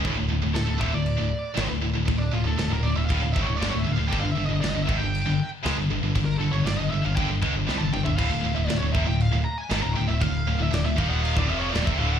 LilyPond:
<<
  \new Staff \with { instrumentName = "Lead electric guitar" } { \time 4/4 \key d \minor \tempo 4 = 118 r4 a'8 e''16 d''4. r8. | r16 d'16 f'16 a'16 a'16 bes'16 d''16 e''16 f''8 e''16 cis''16 d''16 cis''16 e''16 f''16 | g''16 f''16 e''16 ees''16 d''16 ees''16 e''16 g''4 r4 r16 | r16 bes'16 a'16 cis''16 d''16 ees''16 e''16 f''16 g''8 r8. a''16 g''16 e''16 |
f''8. e''16 d''16 cis''16 e''16 g''16 f''8 bes''16 gis''16 a''16 bes''16 g''16 e''16 | f''8. e''16 d''16 e''16 f''16 fis''16 f''16 d''16 e''16 cis''16 d''16 e''16 f''16 fis''16 | }
  \new Staff \with { instrumentName = "Distorted electric guitar" } { \clef bass \time 4/4 \key d \minor <d, a,>16 <d, a,>16 <d, a,>16 <d, a,>16 <d, a,>16 <d, a,>16 <ees, bes,>16 <d, a,>8 <d, a,>16 r8 <gis, ees>16 <d, a,>16 <d, a,>16 <d, a,>16 | <d, a,>8 <d, a,>16 <d, a,>16 <d, a,>16 <d, a,>16 <d, a,>16 <d, a,>16 <d, a,>16 <d, a,>16 <gis, ees>16 <d, a,>16 <g, d>16 <d, a,>16 <d, a,>16 <d, a,>16 | <g, d>16 <g, d>16 <g, d>16 <g, d>16 <g, d>16 <g, d>16 <gis, ees>16 <g, d>8 <g, d>16 r8 <cis gis>16 <g, d>16 <g, d>16 <g, d>16 | <g, d>8 <g, d>16 <g, d>16 <g, d>16 <g, d>16 <g, d>16 <g, d>16 <g, d>16 <g, d>16 <cis gis>16 <g, d>16 <c g>16 <g, d>16 <g, d>16 <g, d>16 |
<d, a,>16 <d, a,>16 <d, a,>16 <d, a,>16 <d, a,>16 <d, a,>16 <ees, bes,>16 <d, a,>8 <d, a,>16 r8 <gis, ees>16 <d, a,>16 <d, a,>16 <d, a,>16 | <d, a,>8 <d, a,>16 <d, a,>16 <d, a,>16 <d, a,>16 <ees, bes, ees>8. <d, a,>16 <f, c f>8 <ees, bes,>16 <f, c>16 <d, a, d>8 | }
  \new Staff \with { instrumentName = "Distorted electric guitar" } { \clef bass \time 4/4 \key d \minor <d, a,>16 <d, a,>16 <d, a,>16 <d, a,>16 <d, a,>16 <d, a,>16 <ees, bes,>16 <d, a,>8 <d, a,>16 r8 <gis, ees>16 <d, a,>16 <d, a,>16 <d, a,>16 | <d, a,>8 <d, a,>16 <d, a,>16 <d, a,>16 <d, a,>16 <d, a,>16 <d, a,>16 <d, a,>16 <d, a,>16 <gis, ees>16 <d, a,>16 <g, d>16 <d, a,>16 <d, a,>16 <d, a,>16 | <g, d>16 <g, d>16 <g, d>16 <g, d>16 <g, d>16 <g, d>16 <gis, ees>16 <g, d>8 <g, d>16 r8 <cis gis>16 <g, d>16 <g, d>16 <g, d>16 | <g, d>8 <g, d>16 <g, d>16 <g, d>16 <g, d>16 <g, d>16 <g, d>16 <g, d>16 <g, d>16 <cis gis>16 <g, d>16 <c g>16 <g, d>16 <g, d>16 <g, d>16 |
<d, a,>16 <d, a,>16 <d, a,>16 <d, a,>16 <d, a,>16 <d, a,>16 <ees, bes,>16 <d, a,>8 <d, a,>16 r8 <gis, ees>16 <d, a,>16 <d, a,>16 <d, a,>16 | <d, a,>8 <d, a,>16 <d, a,>16 <d, a,>16 <d, a,>16 <ees, bes, ees>8. <d, a,>16 <f, c f>8 <ees, bes,>16 <f, c>16 <d, a, d>8 | }
  \new Staff \with { instrumentName = "Distorted electric guitar" } { \clef bass \time 4/4 \key d \minor <d, a,>16 <d, a,>16 <d, a,>16 <d, a,>16 <d, a,>16 <d, a,>16 <ees, bes,>16 <d, a,>8 <d, a,>16 r8 <gis, ees>16 <d, a,>16 <d, a,>16 <d, a,>16 | <d, a,>8 <d, a,>16 <d, a,>16 <d, a,>16 <d, a,>16 <d, a,>16 <d, a,>16 <d, a,>16 <d, a,>16 <gis, ees>16 <d, a,>16 <g, d>16 <d, a,>16 <d, a,>16 <d, a,>16 | <g, d>16 <g, d>16 <g, d>16 <g, d>16 <g, d>16 <g, d>16 <gis, ees>16 <g, d>8 <g, d>16 r8 <cis gis>16 <g, d>16 <g, d>16 <g, d>16 | <g, d>8 <g, d>16 <g, d>16 <g, d>16 <g, d>16 <g, d>16 <g, d>16 <g, d>16 <g, d>16 <cis gis>16 <g, d>16 <c g>16 <g, d>16 <g, d>16 <g, d>16 |
<d, a,>16 <d, a,>16 <d, a,>16 <d, a,>16 <d, a,>16 <d, a,>16 <ees, bes,>16 <d, a,>8 <d, a,>16 r8 <gis, ees>16 <d, a,>16 <d, a,>16 <d, a,>16 | <d, a,>8 <d, a,>16 <d, a,>16 <d, a,>16 <d, a,>16 <ees, bes, ees>8. <d, a,>16 <f, c f>8 <ees, bes,>16 <f, c>16 <d, a, d>8 | }
  \new Staff \with { instrumentName = "Picked electric bass" } { \clef bass \time 4/4 \key d \minor d,,16 d,,16 d,,16 d,,16 d,,16 d,,16 ees,,16 d,,8 d,,16 r8 gis,,16 d,,16 d,,16 d,,16 | d,,8 d,,16 d,,16 d,,16 d,,16 d,,16 d,,16 d,,16 d,,16 gis,,16 d,,16 g,,16 d,,16 d,,16 d,,16 | g,,16 g,,16 g,,16 g,,16 g,,16 g,,16 gis,,16 g,,8 g,,16 r8 cis,16 g,,16 g,,16 g,,16 | g,,8 g,,16 g,,16 g,,16 g,,16 g,,16 g,,16 g,,16 g,,16 cis,16 g,,16 c,16 g,,16 g,,16 g,,16 |
d,,16 d,,16 d,,16 d,,16 d,,16 d,,16 ees,,16 d,,8 d,,16 r8 gis,,16 d,,16 d,,16 d,,16 | d,,8 d,,16 d,,16 d,,16 d,,16 ees,,8. d,,16 f,,8 ees,,16 f,,16 d,,8 | }
  \new DrumStaff \with { instrumentName = "Drums" } \drummode { \time 4/4 <cymc bd>4 <cymc sn>8 bd8 cymc4 <cymc sn>4 | <cymc bd>4 <cymc sn>4 <cymc bd>8 bd8 <cymc sn>4 | <cymc bd>4 <cymc sn>8 bd8 cymc4 <cymc sn>4 | <cymc bd>4 <cymc sn>4 <cymc bd>8 bd8 sn16 tommh16 toml16 tomfh16 |
<cymc bd>4 <cymc sn>8 bd8 cymc4 <cymc sn>4 | <cymc bd>4 <cymc sn>8 bd8 cymc16 bd8. <cymc sn>16 bd8. | }
>>